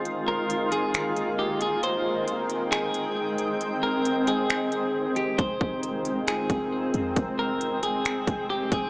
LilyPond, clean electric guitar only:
\new Staff \with { instrumentName = "Clean electric guitar" } { \time 4/4 \key f \minor \tempo 4 = 135 r8 bes'4 aes'4. g'8 aes'8 | c''4 r4 aes'2 | r8 bes'4 aes'2 g'8 | c''4 r4 aes'2 |
r8 bes'4 aes'4. g'8 aes'8 | }